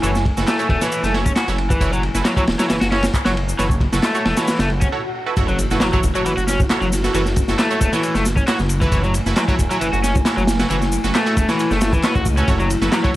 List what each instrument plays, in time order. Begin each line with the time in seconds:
Already playing: analog synth pad A3 E4 G#5
0.03 detuned saw bass F#1, overdriven electric guitar E3, synth stab E4 F#4 A4 C#5, ride, shaker
0.15 snare, shaker
0.26 kick, ride
0.37 detuned saw bass F#1, synth stab E4 F#4 A4 B4, snare, shaker
0.47 overdriven electric guitar A3, snare, clap, ride, shaker
0.59 synth stab E4 F#4 A4 C#5, ride, shaker
0.69 detuned saw bass E1, overdriven electric guitar A3, kick, ride
0.81 overdriven electric guitar E3, synth stab E4 F#4 A4 C#5, snare, shaker
0.92 ride, shaker
1.03 detuned saw bass F#1, overdriven electric guitar A3, snare, shaker
1.14 synth stab E4 F#4 A4 C#5, snare, ride
1.26 overdriven electric guitar C#4, kick, shaker
1.36 overdriven electric guitar F#4, snare, clap, ride, shaker
1.48 detuned saw bass F#1, synth stab E4 F#4 A4 C#5, snare, shaker
1.58 ride
1.70 overdriven electric guitar E3, kick, shaker
1.80 detuned saw bass F#1, synth stab E4 F#4 A4 C#5, kick, ride, shaker
1.93 overdriven electric guitar F#3, shaker
2.03 ride
2.14 detuned saw bass F#1, synth stab E4 F#4 A4 B4, snare, shaker
2.25 overdriven electric guitar F#3, snare, clap, ride, shaker
2.37 overdriven electric guitar F#3, synth stab E4 F#4 A4 C#5, kick, shaker
2.47 detuned saw bass E1, snare, ride
2.59 overdriven electric guitar F#3, synth stab E4 F#4 A4 C#5, snare, ride, shaker
2.70 detuned saw bass F#1, overdriven electric guitar E3, snare, ride, shaker
2.81 detuned saw bass F#1, overdriven electric guitar F#4, snare, ride, shaker
2.92 overdriven electric guitar C#4, synth stab E4 F#4 A4 C#5, snare, ride
3.03 snare, ride, shaker
3.14 kick, clap, ride, shaker
3.25 detuned saw bass F#1, overdriven electric guitar F#3, synth stab E4 F#4 A4 C#5, snare, ride, shaker
3.37 ride
3.49 shaker
3.58 detuned saw bass F#1, overdriven electric guitar E3, synth stab E4 F#4 A4 C#5, snare, ride, shaker
3.70 kick, shaker
3.81 kick, ride
3.92 detuned saw bass F#1, synth stab E4 F#4 A4 B4, snare, shaker
4.03 overdriven electric guitar A3, snare, clap, ride, shaker
4.15 synth stab E4 F#4 A4 C#5, ride, shaker
4.25 detuned saw bass E1, overdriven electric guitar A3, snare, ride
4.37 overdriven electric guitar E3, synth stab E4 F#4 A4 C#5, snare, ride, shaker
4.48 snare, ride, swell, shaker
4.59 detuned saw bass F#1, overdriven electric guitar A3, snare, ride, shaker
4.70 ride
4.81 overdriven electric guitar C#4, kick, ride, shaker
4.92 synth stab E4 F#4 A4 C#5
5.26 synth stab E4 F#4 A4 B4
5.37 detuned saw bass F#1, analog synth pad A3 E4 F#4, synth stab E4 F#4 A4 C#5, kick, ride, impact, shaker
5.48 overdriven electric guitar F#3, shaker
5.58 ride, shaker
5.70 detuned saw bass F#1, synth stab E4 F#4 A4 B4, snare, shaker
5.80 overdriven electric guitar F#3, snare, clap, ride, shaker
5.93 overdriven electric guitar F#3, synth stab E4 F#4 A4 C#5, kick, shaker
6.03 detuned saw bass E1, kick, ride, shaker
6.15 overdriven electric guitar F#3, synth stab E4 F#4 A4 C#5, shaker
6.25 detuned saw bass F#1, overdriven electric guitar E3, ride, shaker
6.37 detuned saw bass F#1, overdriven electric guitar F#4, shaker
6.47 overdriven electric guitar C#4, snare, ride, shaker
6.60 kick, shaker
6.70 synth stab E4 F#4 A4 C#5, snare, clap, ride, shaker
6.81 detuned saw bass F#1, overdriven electric guitar F#3, shaker
6.93 snare, ride, shaker
7.04 synth stab E4 F#4 A4 B4, snare, shaker
7.14 detuned saw bass F#1, overdriven electric guitar E3, synth stab E4 F#4 A4 C#5, ride, shaker
7.26 snare, shaker
7.36 kick, ride, shaker
7.48 detuned saw bass F#1, synth stab E4 F#4 A4 B4, snare, shaker
7.58 overdriven electric guitar A3, snare, clap, ride, shaker
7.70 synth stab E4 F#4 A4 C#5, ride, shaker
7.81 detuned saw bass E1, overdriven electric guitar A3, kick, ride, shaker
7.93 overdriven electric guitar E3, synth stab E4 F#4 A4 C#5, snare, shaker
8.03 ride, shaker
8.15 detuned saw bass F#1, overdriven electric guitar A3, snare, shaker
8.25 snare, ride, shaker
8.36 overdriven electric guitar C#4, kick, shaker
8.47 synth stab E4 F#4 A4 C#5, overdriven electric guitar F#4, snare, clap, ride, shaker
8.59 detuned saw bass F#1, snare, shaker
8.69 ride, shaker
8.81 overdriven electric guitar E3, synth stab E4 F#4 A4 B4, kick, shaker
8.92 detuned saw bass F#1, synth stab E4 F#4 A4 C#5, analog synth pad G#5, kick, ride, shaker
9.04 overdriven electric guitar F#3, shaker
9.14 ride, shaker
9.26 detuned saw bass F#1, synth stab E4 F#4 A4 B4, snare, shaker
9.36 overdriven electric guitar F#3, snare, clap, ride, shaker
9.48 overdriven electric guitar F#3, synth stab E4 F#4 A4 C#5, kick, shaker
9.59 detuned saw bass E1, kick, ride, shaker
9.70 overdriven electric guitar F#3, synth stab E4 F#4 A4 C#5, shaker
9.81 detuned saw bass F#1, overdriven electric guitar E3, ride, shaker
9.93 detuned saw bass F#1, overdriven electric guitar F#4, shaker
10.03 overdriven electric guitar C#4, snare, ride, shaker
10.15 kick, shaker
10.25 synth stab E4 F#4 A4 C#5, snare, clap, ride, shaker
10.37 detuned saw bass F#1, overdriven electric guitar F#3, shaker
10.47 snare, ride, shaker
10.59 synth stab E4 F#4 A4 B4, snare, ride, shaker
10.70 detuned saw bass F#1, overdriven electric guitar E3, synth stab E4 F#4 A4 C#5, ride, shaker
10.82 snare, shaker
10.92 ride, shaker
11.04 detuned saw bass F#1, synth stab E4 F#4 A4 B4, snare, shaker
11.15 overdriven electric guitar A3, snare, clap, ride, shaker
11.26 synth stab E4 F#4 A4 C#5, ride, shaker
11.37 detuned saw bass E1, overdriven electric guitar A3, kick, ride, shaker
11.48 overdriven electric guitar E3, synth stab E4 F#4 A4 C#5, snare, shaker
11.59 ride, shaker
11.71 detuned saw bass F#1, overdriven electric guitar A3, snare, shaker
11.81 overdriven electric guitar A3, snare, ride, shaker
11.93 overdriven electric guitar E3, kick, shaker
12.03 overdriven electric guitar B3, synth stab E4 F#4 A4 C#5, snare, clap, ride, shaker
12.15 detuned saw bass C#2, overdriven electric guitar F#4, kick, shaker
12.26 kick, ride, shaker
12.37 overdriven electric guitar C#4, synth stab E4 F#4 A4 B4, shaker
12.48 detuned saw bass F#1, synth stab E4 F#4 A4 C#5, analog synth pad F#4, kick, ride, shaker
12.60 overdriven electric guitar F#3, shaker
12.70 ride, shaker
12.82 detuned saw bass F#1, synth stab E4 F#4 A4 B4, snare, shaker
12.92 overdriven electric guitar F#3, snare, clap, ride, shaker
13.04 overdriven electric guitar F#3, synth stab E4 F#4 A4 C#5, kick, shaker